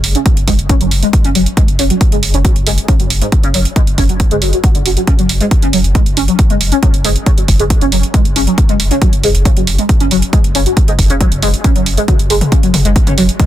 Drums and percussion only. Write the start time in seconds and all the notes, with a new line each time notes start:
0.04 open hi-hat
0.15 closed hi-hat
0.26 kick, closed hi-hat
0.37 closed hi-hat
0.48 kick, open hi-hat
0.59 closed hi-hat
0.69 kick, closed hi-hat
0.81 closed hi-hat
0.91 open hi-hat
1.03 closed hi-hat
1.13 kick, closed hi-hat
1.24 closed hi-hat
1.35 open hi-hat
1.46 closed hi-hat
1.57 kick, closed hi-hat
1.68 closed hi-hat
1.79 open hi-hat
1.90 closed hi-hat
2.01 kick, closed hi-hat
2.12 closed hi-hat
2.23 open hi-hat
2.34 closed hi-hat
2.45 kick, closed hi-hat
2.56 closed hi-hat
2.67 open hi-hat
2.78 closed hi-hat
2.88 kick, closed hi-hat
3.00 closed hi-hat
3.10 open hi-hat
3.22 closed hi-hat
3.32 kick, closed hi-hat
3.43 closed hi-hat
3.54 open hi-hat
3.65 closed hi-hat
3.76 kick, closed hi-hat
3.87 closed hi-hat
3.98 kick, open hi-hat
4.09 closed hi-hat
4.20 kick, closed hi-hat
4.31 closed hi-hat
4.42 open hi-hat
4.53 closed hi-hat
4.64 kick, closed hi-hat
4.75 closed hi-hat
4.86 open hi-hat
4.97 closed hi-hat
5.07 kick, closed hi-hat
5.19 closed hi-hat
5.29 open hi-hat
5.41 closed hi-hat
5.51 kick, closed hi-hat
5.62 closed hi-hat
5.73 open hi-hat
5.84 closed hi-hat
5.95 kick, closed hi-hat
6.06 closed hi-hat
6.17 open hi-hat
6.28 closed hi-hat
6.39 kick, closed hi-hat
6.50 closed hi-hat
6.61 open hi-hat
6.72 closed hi-hat
6.83 kick, closed hi-hat
6.94 closed hi-hat
7.05 open hi-hat
7.16 closed hi-hat
7.26 kick, closed hi-hat
7.38 closed hi-hat
7.48 kick, open hi-hat
7.60 closed hi-hat
7.70 kick, closed hi-hat
7.81 closed hi-hat
7.92 open hi-hat
8.03 closed hi-hat
8.14 kick, closed hi-hat
8.25 closed hi-hat
8.36 open hi-hat
8.47 closed hi-hat
8.58 kick, closed hi-hat
8.69 closed hi-hat
8.80 open hi-hat
8.91 closed hi-hat
9.02 kick, closed hi-hat
9.13 closed hi-hat
9.24 open hi-hat
9.35 closed hi-hat
9.45 kick, closed hi-hat
9.57 closed hi-hat
9.67 open hi-hat
9.79 closed hi-hat
9.89 kick, closed hi-hat
10.00 closed hi-hat
10.11 open hi-hat
10.22 closed hi-hat
10.33 kick, closed hi-hat
10.44 closed hi-hat
10.55 open hi-hat
10.66 closed hi-hat
10.77 kick, closed hi-hat
10.88 closed hi-hat
10.99 kick, open hi-hat
11.10 closed hi-hat
11.21 kick, closed hi-hat
11.32 closed hi-hat
11.43 open hi-hat
11.54 closed hi-hat
11.64 kick, closed hi-hat
11.76 closed hi-hat
11.86 open hi-hat
11.97 closed hi-hat
12.08 kick, closed hi-hat, mid tom
12.19 closed hi-hat
12.30 open hi-hat
12.41 closed hi-hat, mid tom
12.52 kick, closed hi-hat
12.63 closed hi-hat
12.74 open hi-hat, mid tom
12.85 closed hi-hat
12.96 kick, closed hi-hat
13.07 closed hi-hat, mid tom
13.18 open hi-hat
13.29 closed hi-hat
13.40 kick, closed hi-hat, mid tom